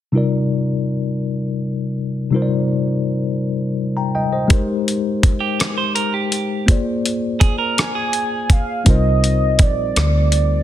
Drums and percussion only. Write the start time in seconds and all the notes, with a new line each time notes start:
4.50 kick, closed hi-hat
4.88 closed hi-hat
5.23 kick, closed hi-hat
5.60 cross-stick, closed hi-hat
5.96 closed hi-hat
6.32 closed hi-hat
6.68 kick, closed hi-hat
7.06 closed hi-hat
7.41 kick, closed hi-hat
7.78 cross-stick, closed hi-hat
8.13 closed hi-hat
8.50 kick, closed hi-hat
8.86 kick, closed hi-hat
9.24 closed hi-hat
9.59 kick, closed hi-hat
9.96 cross-stick, closed hi-hat
10.32 closed hi-hat